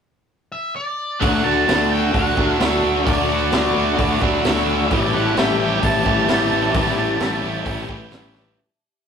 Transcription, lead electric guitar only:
0.52 E5
0.76 D5
1.20 F#5
1.44 A5
1.91 G5
2.15 F#5
2.60 E5
3.05 D5
4.22 E5
4.92 D5
5.14 F#5
5.38 G5
5.60 G5
5.84 A5

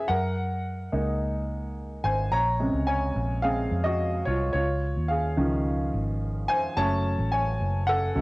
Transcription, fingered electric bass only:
0.09 F#2
0.93 C#2
2.04 G#1
2.31 A#1
2.74 C#2
3.16 A#1
3.71 F2
4.27 C2
4.54 C#2
4.96 D#2
5.38 C#2
5.94 G#1
6.77 F#1
7.19 A1
7.61 F#1
8.16 C#2

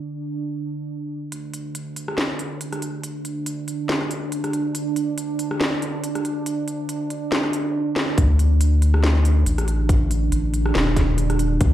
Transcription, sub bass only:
1.32 D2
2.18 F1
2.82 D2
3.68 A1
4.11 D2
4.75 D2
5.61 F1
6.25 D2
7.11 D2
8.18 D2
9.46 A1
10.32 A1
10.75 D#1
11.61 D2

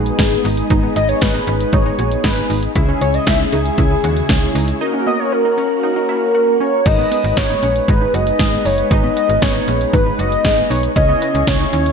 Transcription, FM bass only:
Already playing: A#1
0.19 G#1
0.45 G#1
0.70 G#1
0.96 G#1
1.22 G#1
1.47 G#1
1.73 G#1
1.99 A#1
2.24 G#1
2.50 G#1
2.76 C#2
3.01 C#2
3.27 C#2
3.53 C#2
3.78 C#2
4.04 D#2
4.29 C#2
4.55 C#2
6.86 G#1
7.24 G#1
7.37 G#1
7.63 A#1
7.88 G#1
8.14 F#1
8.39 G#1
8.65 F#1
8.91 G#1
9.29 G#1
9.42 G#1
9.68 A#1
9.93 G#1
10.19 F#1
10.45 G#1
10.70 B1
10.96 C#2
11.35 C#2
11.47 C#2
11.73 D#2

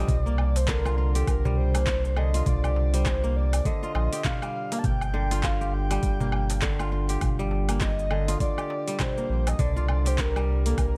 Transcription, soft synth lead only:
Already playing: D#5
0.09 D#5
0.20 D5
0.56 C5
0.68 A#4
1.16 A4
1.28 A#4
1.57 C5
2.17 D#5
2.47 D5
2.94 C5
3.36 D5
3.66 D#5
4.25 F5
4.79 A5
4.85 G5
5.44 F5
5.74 G5
7.81 D#5
8.41 D5
8.94 D5
9.00 C5
9.48 D#5
9.60 D5
10.08 C5
10.20 A#4
10.67 A4
10.79 A#4

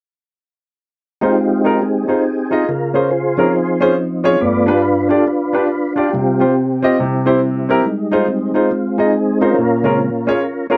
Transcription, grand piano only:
1.21 D#4 F4 G#4 C5
1.64 D#4 F4 G#4 A#4
2.08 D#4 F4 G#4 C5
2.51 D#4 F4 G#4 D#5
2.69 C#3
2.94 C#4 F4 G#4 C5
3.38 C#4 F4 G#4 A#4
3.81 C#4 F4 G#4 C5
4.24 C#4 F4 G#4 C#5
4.41 G2
4.66 D4 F4 G4 B4
5.09 D4 F4 G4 D5
5.53 D4 F4 G4 B4
5.96 D4 F4 G4 D5
6.14 C3
6.40 C4 F4 G4 C5
6.82 C4 F4 G4 D#5
7.00 C3
7.26 C4 E4 G4 C5
7.69 C4 E4 G4 A#4
8.12 D#4 F4 G#4 C5
8.54 D#4 F4 G#4 C5
8.98 D#4 F4 G#4 D#5
9.41 D#4 F4 G#4 C5
9.58 A#2
9.84 C#4 F4 G#4 A#4
10.27 C#4 F4 G#4 C#5
10.70 C#4 F4 G#4 A#4

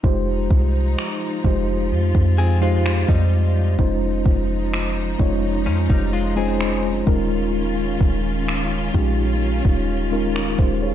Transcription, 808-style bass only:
0.04 F1
0.51 C2
1.44 F1
1.91 F2
2.15 F2
3.09 F2
3.79 F1
4.26 F1
5.19 F1
5.66 F2
5.90 F1
7.07 D#1
8.01 D#1
8.95 A#1
9.65 D#1
10.59 D#1

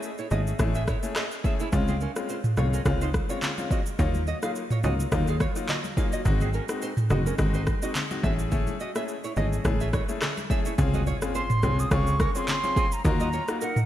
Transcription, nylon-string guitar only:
0.19 E4 C#5
0.31 F#4 D#5
0.75 G#4 E5
0.88 E4 C#5
1.16 G#4 D#5
1.45 G#4 E5
1.60 E4 C#5
1.88 C4 G#4
2.01 C#4 A#4
2.29 F4 C5
2.58 F4 C#5
2.73 C#4 A#4
3.02 D#4 C5
3.30 F4 C#5
3.71 F#4 D#5
3.99 F4 C#5
4.28 F#4 D#5
4.43 G#4 F5
4.71 F4 C#5
4.84 F#4 D#5
5.28 G#4 F5
5.41 F4 C#5
5.69 F#4 D#5
5.97 G#4 F5
6.13 F#4 D#5
6.41 C4 G#4
6.54 C#4 A#4
6.82 D#4 C5
7.11 F#4 D#5
7.26 C#4 A#4
7.55 D#4 C5
7.83 F#4 D#5
8.24 G#4 E5
8.52 E4 C#5
8.81 F#4 D#5
8.96 G#4 E5
9.24 E4 C#5
9.37 F#4 D#5
9.81 G#4 E5
9.94 E4 C#5
10.22 G#4 D#5
10.50 G#4 E5
10.66 E4 C#5
10.94 F#4 D#5
11.07 F4 C#5
11.35 F4 C5
12.20 C#4 A#4
12.77 C4 G#4
13.21 F#4 D#5
13.33 F4 C#5
13.62 D#4 A#4

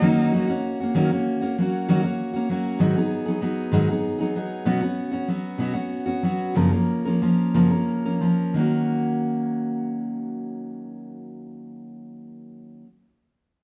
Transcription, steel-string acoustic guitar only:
0.01 D#3 F#3 A#3 C#4 F#4
0.33 F#3 A#3 C#4 F#4
0.48 A#3 C#4 F#4
0.80 A#3 C#4 F#4
0.94 D#3 F#3 A#3 C#4 F#4
1.12 A#3 C#4 F#4
1.41 A#3 C#4 F#4
1.58 F#3 A#3 C#4 F#4
1.88 D#3 F#3 A#3 C#4 F#4
2.02 A#3 C#4 F#4
2.34 A#3 C#4 F#4
2.49 F#3 A#3 C#4 F#4
2.79 G#2 D#3 F#3 B3 D#4 G#4
2.96 F#3 B3 D#4 G#4
3.25 F#3 B3 D#4 G#4
3.41 F#3 B3 D#4 G#4
3.72 G#2 D#3 F#3 B3 D#4 G#4
3.89 F#3 B3 D#4 G#4
4.19 F#3 B3 D#4 G#4
4.35 F#3 B3 D#4 G#4
4.65 B2 F#3 B3 C#4 F#4
4.81 B3 C#4 F#4
5.11 B3 C#4 F#4
5.28 F#3 B3 C#4 F#4
5.58 B2 F#3 B3 C#4 F#4
5.73 B3 C#4 F#4
6.06 B3 C#4 F#4
6.23 F#3 B3 C#4 F#4
6.55 F#2 C#3 F3 A#3 C#4 A#4
6.71 F3 A#3 C#4 A#4
7.05 F3 A#3 C#4 A#4
7.22 F3 A#3 C#4 A#4
7.54 F#2 C#3 F3 A#3 C#4 A#4
7.70 F3 A#3 C#4 A#4
8.05 F3 A#3 C#4 A#4
8.21 F3 A#3 C#4 A#4
8.54 D#3 F#3 A#3
8.58 C#4 F#4

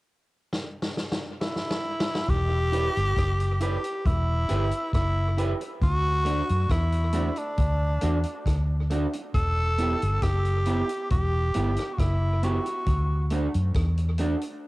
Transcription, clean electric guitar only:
2.72 E4 G4 B4
3.61 E4 G4 B4
4.49 E4 G4 B4
5.37 E4 G4 B4
5.61 muted clean electric guitar stroke
6.25 A3 D4 F#4
7.13 A3 D4 F#4
8.02 A3 D4 F#4
8.90 A3 D4 F#4
9.14 muted clean electric guitar stroke
9.78 B3 E4 G4
10.66 B3 E4 G4
11.55 B3 E4 G4
12.43 B3 E4 G4
12.66 muted clean electric guitar stroke
13.31 A3 D4 F#4
14.19 A3 D4 F#4

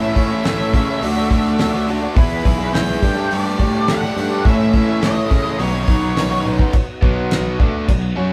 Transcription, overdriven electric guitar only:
Already playing: A2 E3 A3 C#4 E4
0.15 E3 A3 C#4 E4
0.30 A3 C#4 E4
0.45 A2 E3 A3 C#4 E4
0.73 E3 A3 C#4 E4
0.88 A3 C#4 E4
1.02 D3 A3 D4 F#4
1.16 A3 D4 F#4
1.30 D3 A3 D4 F#4
1.58 D3 A3 D4 F#4
1.73 A3 D4 F#4
1.88 D3 A3 D4 F#4
2.01 A3 D4 F#4
2.15 E3 B3 E4 G#4
2.44 E3 B3 E4 G#4
2.58 B3 E4 G#4
2.72 E3 B3 E4 G#4
3.02 G3 A3 D4 G4
3.16 A3 D4 G4
3.45 A3 D4 G4
3.59 G3 A3 D4 G4
3.88 G3 A3 D4 G4
4.02 A3 D4 G4
4.16 G3 A3 D4 G4
4.30 A3 D4 G4
4.45 A2 E3 A3 C#4 E4
4.73 E3 A3 C#4 E4
4.87 A3 C#4 E4
5.01 A2 E3 A3 C#4 E4
5.29 E3 A3 C#4 E4
5.44 A3 C#4 E4
5.59 B2 D#3 F#3 B3 D#4
5.73 F#3 B3 D#4
5.88 D#3 F#3 B3 D#4
6.16 B2 D#3 F#3 B3 D#4
6.30 F#3 B3 D#4
6.44 D#3 F#3 B3 D#4
6.58 F#3 B3 D#4
7.01 B2 F#3 B3
7.60 D3 A3 D4
7.88 B2 F#3
8.16 F#3 C#4 F#4

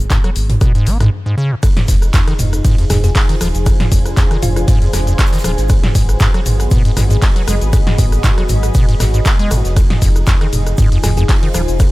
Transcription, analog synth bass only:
0.36 G#1
0.87 G#1
1.88 F1
2.39 F1
2.90 F1
3.41 D#1
3.55 F1
3.92 F1
4.43 F1
4.93 F1
5.44 D#1
5.58 G#1
5.95 G#1
6.46 G#1
6.97 G#1
7.48 F#1
7.61 G#1
7.99 G#1
8.49 G#1
9.00 G#1
9.51 G#1
9.65 F1
10.02 F1
10.53 F1
11.04 F1
11.54 D#1
11.68 F1

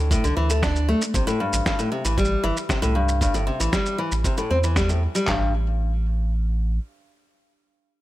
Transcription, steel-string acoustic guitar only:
0.11 A2
0.24 D3
0.37 E3
0.50 A3
0.63 D4
0.89 A3
1.14 C3
1.27 A2
1.40 G2
1.66 G2
1.79 A2
1.92 C3
2.05 E3
2.18 G3
2.44 E3
2.69 C3
2.82 A2
2.95 G2
3.21 G2
3.34 A2
3.47 C3
3.60 E3
3.73 G3
3.98 E3
4.24 C3
4.38 A2
4.51 C4
4.64 E3
4.76 G3
4.89 A2
5.15 G3
5.28 G2

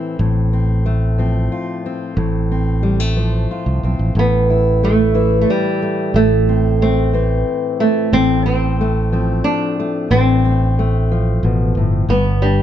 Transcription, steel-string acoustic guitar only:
Already playing: A2 E3 A3 C4 E4
0.20 A2
0.53 C4
0.86 A3
1.18 F3 C4
1.52 F4
1.86 C4
2.17 A2
2.51 C4
2.83 G3
3.00 A3
3.16 F3 C4
3.51 F4
3.84 C4
4.16 A2
4.50 E4
4.83 A3
5.15 E3 E4
5.82 A3
6.15 A2
6.49 C4
6.82 A3
7.13 E3 C4
7.81 A3
8.13 A2
8.47 C4
8.81 A3
9.12 F3 C4
9.80 A3
10.11 A2
10.45 C4
10.79 A3
11.11 F3
11.44 B2
11.77 A2
12.10 G2
12.43 D4

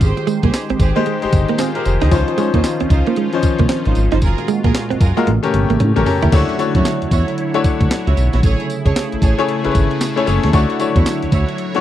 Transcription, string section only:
0.01 G4 G#4 C5
0.43 G4 G#4 C5
0.80 G4 G#4 C5
1.75 G4 G#4 C5
2.01 G4 G#4 C5
2.11 D#4 F4 C5
2.54 D#4 F4 C5
2.90 D#4 F4 C5
3.86 D#4 F4 C5
4.12 D#4 F4 C5
4.22 F4 G#4 A#4
4.64 F4 G#4 A#4
5.01 F4 G#4 A#4
5.96 C#4 G4 A#4
6.22 C#4 G4 A#4
6.32 E4 F#4 C#5
6.75 E4 F#4 C#5
7.11 E4 F#4 C#5
8.06 E4 F#4 C#5
8.33 E4 F#4 C#5
8.42 G#4 A4 C#5
8.85 G#4 A4 C#5
9.22 G#4 A4 C#5
10.17 G#4 A4 C#5
10.43 G#4 A4 C#5
10.53 E4 F#4 C#5
10.95 E4 F#4 C#5
11.32 E4 F#4 C#5

